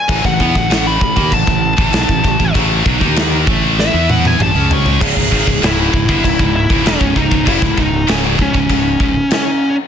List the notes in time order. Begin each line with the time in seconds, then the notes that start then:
Already playing: G#5
0.08 A1 A2 E3, kick, china
0.24 A1 A2 E3 F#5, kick
0.40 E2 E3 B3, kick
0.55 A1 A2 E3, kick
0.70 A1 A2 E3 A3, snare, china
0.87 B5
1.01 A1 A2 E3, kick
1.16 D#2 D#3 A#3, kick
1.31 A1 A2 E3 A5, kick, china
1.47 A1 A2 E3, kick
1.77 A1 A2 E3, kick
1.92 B1 B2 F#3, snare, china
2.08 A1 A2 E3, kick
2.24 A1 A2 E3, kick
2.40 A1 A2 E3, kick
2.54 A1 A2 E3 A3, kick, china
2.85 B1 B2 F#3, kick
3.00 D#2 D#3 A#3 D#4, kick
3.16 snare, china
3.46 A1 A2 E3 A3, kick
3.79 E5, snare
3.93 E2 E3 B3 E4
4.10 F#5, high tom
4.25 G#5, high tom
4.39 A1 A2 E3 A5, mid tom
4.54 C#2 C#3 G#3 C#4
4.71 C#6, floor tom
4.86 floor tom
5.00 C#1 C#2 G#2 G#4, kick, crash, china
5.16 C#1 C#2 G#2, kick
5.32 G#1 G#2 D#3, kick
5.47 C#1 C#2 G#2, kick
5.62 C#1 C#2 G#2 C#3 E4, snare, china
5.93 C#1 C#2 G#2, kick
6.08 G1 G2 D3, kick
6.24 C#1 C#2 G#2 E4, kick, china
6.39 C#1 C#2 G#2, kick
6.56 E4
6.70 C#1 C#2 G#2, kick
6.85 E1 E2 B2 C#4, snare, china
7.01 C#1 C#2 G#2, kick
7.16 C#1 C#2 G#2 D#4, kick
7.31 C#1 C#2 G#2, kick
7.46 F#1 F#2 C#3 E4, kick, china
7.62 C#1 C#2 G#2, kick
7.77 C#1 C#2 G#2 D#4, kick
8.07 C#1 C#2 G#2 C#3 C#4, snare, china
8.38 C#1 C#2 G#2 C#4, kick
8.54 C#1 C#2 G#2, kick
8.70 C#1 C#2 G#2, kick, china
9.00 C#1 C#2 G#2, kick
9.31 C#4, snare, china